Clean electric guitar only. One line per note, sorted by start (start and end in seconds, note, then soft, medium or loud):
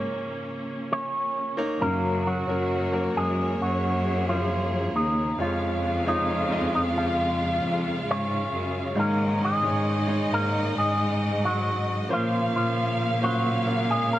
0.92 1.77 C#4 medium
0.92 1.81 C#5 loud
1.82 2.23 A#3 medium
1.82 2.27 A#4 medium
2.27 3.12 F#3 medium
2.27 3.12 F#4 medium
3.17 3.58 G#3 medium
3.17 3.62 G#4 medium
3.61 4.24 F#3 medium
3.61 4.29 F#4 medium
4.29 4.91 F3 medium
4.29 4.97 F4 medium
4.96 5.41 D#4 medium
4.96 5.37 D#5 medium
5.41 6.03 F3 medium
5.41 6.07 F4 medium
6.08 6.74 D#4 medium
6.08 6.70 D#5 medium
6.75 6.81 D#4 medium
6.75 6.81 D#5 medium
6.97 7.82 F3 medium
6.97 7.82 F4 medium
8.11 8.95 C#4 medium
8.11 8.99 C#5 medium
8.99 9.40 A#3 medium
8.99 9.44 A#4 medium
9.44 10.29 G#3 medium
9.44 10.33 G#4 medium
10.33 10.74 A#3 medium
10.33 10.78 A#4 medium
10.78 11.40 G#3 medium
10.78 11.45 G#4 medium
11.45 12.07 F#3 medium
11.45 12.12 F#4 medium
12.12 12.53 F3 medium
12.12 12.55 F4 medium
12.56 13.19 F3 medium
12.56 13.19 F4 medium
13.24 13.86 F#3 medium
13.24 13.90 F#4 medium
13.91 14.11 G#3 medium
13.91 14.13 G#4 medium
14.13 14.19 A#3 medium
14.13 14.19 A#4 medium